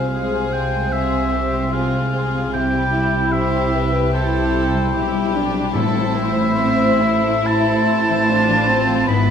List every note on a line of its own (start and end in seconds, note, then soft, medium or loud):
0.00 2.49 C2 medium
0.00 2.49 C3 medium
0.00 2.52 C3 medium
0.00 1.51 G#3 soft
0.00 0.12 C4 soft
0.00 1.32 C4 soft
0.00 2.57 F4 soft
0.00 0.12 G#4 medium
0.00 0.13 C5 soft
0.00 0.33 C5 soft
0.00 0.53 F5 soft
0.00 0.55 F5 medium
0.13 0.52 G#3 medium
0.13 0.91 G#4 medium
0.13 1.11 G#4 soft
0.13 1.70 C5 medium
0.34 3.54 C5 soft
0.53 0.92 G#3 medium
0.53 0.92 F5 medium
0.53 0.94 G5 medium
0.74 2.57 G#5 soft
0.92 2.52 C4 medium
0.92 1.31 G#4 medium
0.92 1.74 E5 medium
0.92 2.57 F5 medium
1.13 2.56 G#4 soft
1.32 1.72 C4 soft
1.32 1.73 G4 medium
1.53 1.91 G#3 soft
1.72 2.12 C4 soft
1.72 2.52 F4 medium
1.72 2.12 G#4 medium
1.72 2.53 F5 medium
1.93 2.33 G#3 soft
2.13 2.93 C4 soft
2.13 2.53 G#4 medium
2.34 2.57 G#3 soft
2.53 4.90 C2 medium
2.53 4.90 C3 medium
2.53 5.78 C3 medium
2.53 2.92 C4 medium
2.53 3.33 E4 medium
2.53 3.34 G4 medium
2.53 3.34 G5 medium
2.74 4.72 G3 soft
2.93 4.52 C4 soft
2.93 4.11 E4 medium
3.14 6.34 E4 soft
3.32 4.13 G4 medium
3.32 4.33 G4 medium
3.32 3.74 C5 medium
3.32 4.13 E5 medium
3.55 6.76 C5 medium
3.74 4.14 B4 medium
3.74 4.13 E5 medium
3.95 5.79 G5 medium
4.13 4.93 E4 medium
4.13 4.93 G4 medium
4.13 4.94 A4 medium
4.13 5.32 C5 medium
4.13 6.99 E5 medium
4.34 5.78 G4 medium
4.54 4.93 C4 soft
4.74 5.12 G3 medium
4.93 5.75 B1 medium
4.93 5.75 B2 medium
4.93 5.33 C4 medium
4.93 5.34 E4 medium
4.93 5.73 G4 medium
5.14 5.53 G3 medium
5.34 6.14 C4 medium
5.34 5.75 D4 medium
5.54 5.78 G3 soft
5.74 9.09 A1 medium
5.74 6.97 A2 medium
5.74 9.12 A2 medium
5.74 9.09 A2 medium
5.74 6.55 C4 medium
5.74 6.55 E4 medium
5.74 6.16 A4 medium
5.74 7.48 E5 loud
5.95 8.08 E3 medium
6.15 7.88 C4 medium
6.15 7.46 C5 medium
6.36 9.30 E4 medium
6.56 7.00 C4 medium
6.56 8.26 E4 medium
6.56 7.67 A4 medium
6.77 9.12 C5 medium
7.00 8.30 E4 medium
7.00 7.45 E5 medium
7.24 9.12 A5 medium
7.46 9.06 C5 medium
7.46 9.30 E5 medium
7.46 9.08 A5 loud
7.68 9.12 A4 medium
7.89 8.27 C4 medium
8.09 8.48 E3 medium
8.29 8.68 C4 medium
8.29 8.69 D4 medium
8.29 9.07 F4 medium
8.50 8.88 E3 medium
8.69 9.09 C4 medium
8.69 9.12 C4 medium
8.90 9.13 E3 medium
9.08 9.30 G#1 medium
9.08 9.30 G#2 medium
9.08 9.30 B3 medium
9.08 9.30 E4 medium
9.08 9.30 B4 medium
9.08 9.30 B5 loud